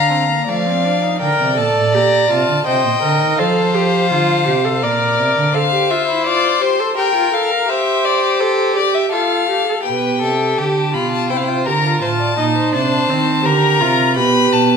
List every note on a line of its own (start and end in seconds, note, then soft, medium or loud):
0.00 0.45 D3 medium
0.00 0.12 D4 medium
0.00 0.47 F5 medium
0.00 0.50 A#5 medium
0.10 0.28 C4 medium
0.29 0.47 A#3 soft
0.47 1.19 F3 medium
0.47 0.68 A3 medium
0.47 1.19 D5 medium
0.47 1.20 F5 medium
0.66 0.86 C4 medium
0.85 1.04 D4 medium
1.02 1.20 D#4 medium
1.21 1.28 D3 medium
1.21 1.55 A#4 medium
1.21 2.62 D5 medium
1.21 1.59 G5 medium
1.39 1.59 C3 medium
1.58 1.75 A#2 medium
1.58 1.96 A4 medium
1.58 1.94 A5 medium
1.76 1.95 A2 medium
1.94 2.30 A#2 medium
1.94 2.30 G4 medium
1.94 2.32 A#5 medium
2.30 2.48 C3 medium
2.30 2.66 F4 medium
2.30 2.66 A5 medium
2.49 2.56 D3 medium
2.66 2.84 C3 medium
2.66 3.02 C5 medium
2.66 3.40 D#5 medium
2.66 3.37 G5 medium
2.85 2.92 A#2 medium
3.02 3.22 D3 medium
3.02 3.40 A#4 medium
3.20 3.40 D#3 medium
3.38 4.12 F3 medium
3.38 3.76 A4 medium
3.38 4.85 C5 medium
3.38 4.85 F5 medium
3.75 4.10 G4 medium
4.11 4.48 D3 medium
4.11 4.46 F4 medium
4.47 4.84 C3 medium
4.47 4.66 G4 medium
4.65 4.84 A4 medium
4.83 5.20 A#2 medium
4.83 5.55 A#4 medium
4.83 5.54 D5 medium
4.83 5.56 D5 medium
5.18 5.36 C3 medium
5.36 5.54 D3 medium
5.55 5.62 A4 medium
5.55 6.95 C5 medium
5.55 5.93 F5 medium
5.73 5.92 G4 medium
5.91 6.08 F4 medium
5.91 6.26 E5 medium
6.08 6.28 E4 medium
6.26 6.61 F4 medium
6.26 6.63 D5 medium
6.62 6.82 G4 medium
6.62 6.97 C5 medium
6.80 6.97 A4 medium
6.98 7.15 G4 medium
6.98 7.67 A#4 medium
6.98 7.35 G5 medium
7.15 7.33 F4 medium
7.34 7.53 A4 medium
7.34 7.71 F5 medium
7.51 7.71 A#4 medium
7.69 9.10 G4 medium
7.69 8.42 C5 medium
7.69 8.06 E5 medium
8.05 8.42 D5 medium
8.40 8.78 A4 medium
8.40 8.76 C5 medium
8.76 9.14 G4 medium
8.76 8.96 D5 medium
8.95 9.12 E5 medium
9.12 9.49 F4 medium
9.12 9.84 A4 medium
9.12 9.84 F5 medium
9.49 9.67 G4 medium
9.68 9.85 A4 medium
9.85 10.23 B2 medium
9.85 11.32 G4 medium
9.85 10.19 B4 medium
9.85 10.59 G5 medium
10.22 10.58 C3 medium
10.22 10.60 A4 medium
10.58 10.96 D3 medium
10.58 10.94 G4 medium
10.58 10.95 A5 medium
10.93 11.32 B2 medium
10.93 11.32 F4 medium
10.93 11.11 B5 medium
11.12 11.29 A5 medium
11.29 11.68 C3 medium
11.29 11.50 E4 medium
11.29 11.67 C5 medium
11.29 11.38 G5 medium
11.36 11.45 F5 medium
11.44 11.66 G5 medium
11.48 11.66 F4 medium
11.66 12.02 D3 medium
11.66 11.74 G4 medium
11.66 12.01 A#4 medium
11.66 12.01 A#5 medium
11.85 12.01 F4 medium
12.01 12.38 A2 medium
12.01 12.37 F4 medium
12.01 12.09 C5 medium
12.01 12.72 A5 medium
12.20 12.37 D5 medium
12.38 12.73 A#2 medium
12.38 12.74 D#4 medium
12.38 12.45 D#5 medium
12.55 13.47 C5 medium
12.73 13.08 C3 medium
12.73 13.11 D4 medium
12.73 13.47 A5 medium
13.09 13.47 D#3 medium
13.09 13.44 C4 medium
13.45 13.82 D3 medium
13.45 13.82 G4 medium
13.45 14.16 A#4 medium
13.45 14.16 A#5 medium
13.80 14.18 C3 medium
13.80 14.17 F4 medium
14.16 14.51 B2 medium
14.16 14.77 G4 medium
14.16 14.77 B4 medium
14.16 14.54 B5 medium
14.52 14.77 B2 medium
14.52 14.77 A5 medium